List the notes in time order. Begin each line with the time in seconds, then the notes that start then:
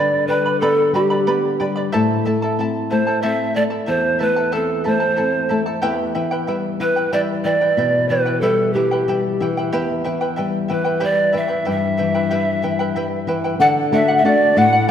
Already playing: D3 B4 D5 G5
0.00 B5
0.27 G3 B4 D5 G5 B5
0.46 B4 D5 B5
0.60 B3 G4 A4 B4 D5 G5 B5
0.93 G3 G4 B4 D5 G5 B5
1.10 B4 D5 B5
1.27 B3 B4 D5 G5 B5
1.60 G3 B4 D5 G5 B5
1.76 B4 D5 B5
1.92 A2 E4 A4 C5 E5 A5
2.25 A3 E4 A4 E5 A5
2.42 E4 A4 A5
2.59 C4 E4 A4 E5 A5
2.91 A3 E4 A4 C5 E5 A5
3.07 E4 A4 A5
3.22 C4 E4 A4 C5 E5 A5
3.54 A3 E4 A4 D5 E5 A5
3.70 E4 A4 A5
3.86 E2 E4 A4 C5 E5 A5
4.19 A3 E4 A4 B4 E5 A5
4.36 E4 A4 A5
4.52 C4 E4 A4 C5 E5 A5
4.84 A3 E4 A4 C5 E5 A5
5.00 E4 A4 A5
5.16 C4 E4 A4 E5 A5
5.49 A3 E4 A4 E5 A5
5.66 E4 A4 A5
5.82 E2 E4 G4 B4 E5 G5
6.15 E3 E4 B4 E5 G5
6.31 E4 B4 G5
6.47 G3 E4 B4 E5 G5
6.80 E3 E4 B4 E5 G5
6.96 E4 B4 G5
7.12 G3 E4 G4 B4 D5 E5 G5
7.44 E3 E4 B4 D5 E5 G5
7.61 E4 B4 G5
7.77 B2 E4 B4 E5 G5
8.08 E3 E4 B4 E5 G5
8.26 E4 B4 G5
8.41 G3 E4 G4 A4 B4 E5 G5
8.73 E3 E4 G4 B4 E5 G5
8.91 E4 B4 G5
9.08 G3 E4 B4 E5 G5
9.40 E3 E4 B4 E5 G5
9.57 E4 B4 G5
9.73 E2 E4 G4 B4 E5 G5
10.04 E3 E4 B4 E5 G5
10.21 E4 B4 G5
10.36 G3 E4 B4 E5 G5
10.68 E3 E4 B4 E5 G5
10.84 E4 B4 G5
11.00 G3 E4 G4 B4 D5 E5 G5
11.32 E3 E4 B4 E5 G5
11.37 E5
11.48 E4 B4 G5
11.65 G2 E4 B4 E5 G5
11.70 E5
11.97 E3 E4 B4 E5 G5
12.14 E4 B4 G5
12.31 G3 E4 G4 B4 E5 G5
12.62 E3 E4 B4 E5 G5
12.79 E4 B4 G5
12.96 G3 E4 B4 E5 G5
13.27 E3 E4 B4 E5 G5
13.44 E4 B4 G5
13.60 D3 A4 D5 F#5
13.92 A3 D4 F#4 A4 D5 E5 F#5
14.08 D5 F#5
14.16 E5
14.24 A3 D4 F#4 A4 D5 F#5
14.56 A2 A4 D5 F#5
14.73 D5 F#5